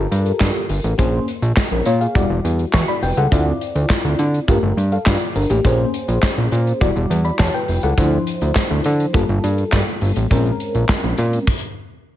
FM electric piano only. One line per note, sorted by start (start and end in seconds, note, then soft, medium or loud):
0.00 0.96 F4 medium
0.00 0.96 G4 medium
0.00 0.96 A4 medium
0.00 0.97 A#4 medium
0.98 2.12 A#3 medium
0.98 1.27 C#4 medium
0.98 1.27 G#4 medium
0.98 1.28 C5 medium
1.72 1.86 C#4 medium
1.72 1.86 A#4 medium
1.86 2.00 F4 medium
1.86 2.00 C#5 medium
2.01 2.29 G#4 medium
2.01 2.28 F5 medium
2.15 3.29 G3 medium
2.15 3.29 E4 medium
2.15 3.30 F#4 medium
2.15 2.44 D5 medium
2.74 2.88 E5 medium
2.74 2.87 C#6 medium
2.88 3.02 D5 medium
2.88 3.02 B5 medium
3.03 3.17 B4 medium
3.03 3.16 G5 medium
3.17 3.45 A4 medium
3.17 3.45 F#5 medium
3.31 4.46 C4 medium
3.31 4.46 E4 medium
3.31 4.46 F4 medium
3.31 4.46 D5 medium
4.48 4.76 A3 medium
4.48 4.77 F4 medium
4.48 4.77 G4 medium
4.48 4.77 A#4 medium
4.92 5.06 A4 soft
4.92 5.06 F5 medium
5.07 5.35 F4 medium
5.07 5.34 D5 medium
5.36 5.50 D4 medium
5.36 5.50 A#4 medium
5.51 5.63 A#3 medium
5.51 5.78 G4 medium
5.64 6.79 A#3 medium
5.64 6.79 C#4 medium
5.64 6.79 G#4 medium
5.64 6.79 C5 medium
6.81 6.87 F#3 medium
6.81 7.95 E4 medium
6.81 7.96 F#4 medium
6.81 7.10 D5 medium
6.87 7.98 G3 medium
7.25 7.39 D5 medium
7.25 7.39 B5 medium
7.40 7.54 C#5 medium
7.40 7.53 A5 medium
7.54 7.82 B4 medium
7.54 7.82 G5 medium
7.83 8.11 A4 medium
7.83 8.11 F#5 medium
7.97 9.11 F3 medium
7.97 9.12 D4 medium
7.97 9.12 E4 medium
7.97 9.12 C5 medium
9.13 10.28 G3 medium
9.13 10.28 A#3 medium
9.13 10.29 F4 medium
9.13 10.29 A4 medium
10.30 11.45 G#3 medium
10.30 11.45 C4 medium
10.30 11.45 C#4 medium
10.30 11.45 A#4 medium